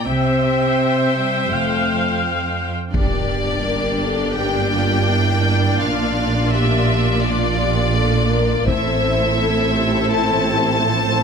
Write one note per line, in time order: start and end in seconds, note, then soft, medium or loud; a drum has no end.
0.07 0.75 C2 soft
0.07 1.51 C3 soft
0.07 1.12 C4 medium
0.07 2.74 C5 soft
0.07 1.48 E5 soft
0.07 2.74 G5 soft
1.17 1.52 G3 soft
1.50 2.18 F1 soft
1.50 2.71 F2 soft
1.50 2.23 A3 soft
1.50 2.74 F5 soft
2.93 5.76 G1 soft
2.93 5.76 G2 soft
2.93 8.63 A#3 soft
2.93 8.63 D4 soft
2.93 5.77 G4 soft
2.93 3.62 G4 soft
2.93 4.33 D5 medium
2.93 8.64 D5 soft
2.93 taiko soft
2.93 impact soft
3.68 4.02 A#4 soft
4.02 4.38 A4 soft
4.36 4.74 G4 soft
4.36 5.77 G5 medium
4.74 5.09 F4 soft
5.08 5.80 E4 soft
5.80 8.67 A#1 soft
5.80 8.67 A#2 soft
5.80 6.53 D4 soft
5.80 8.63 F4 soft
5.80 6.52 F5 medium
6.52 7.23 G4 soft
6.52 7.22 E5 medium
7.24 7.60 F4 soft
7.24 8.67 D5 medium
7.58 7.95 G4 soft
7.95 8.31 A4 soft
8.30 8.67 A#4 soft
8.66 11.23 A1 medium
8.66 11.23 A2 soft
8.66 11.23 C4 soft
8.66 11.23 E4 soft
8.66 11.23 A4 soft
8.66 9.38 C5 medium
8.66 11.23 C5 soft
8.66 10.08 E5 medium
8.66 taiko medium
9.38 9.74 A4 soft
9.73 10.10 G4 medium
10.09 10.46 A4 soft
10.09 11.23 A5 medium
10.45 10.81 G4 medium
10.81 11.18 F3 soft
11.17 11.23 E4 soft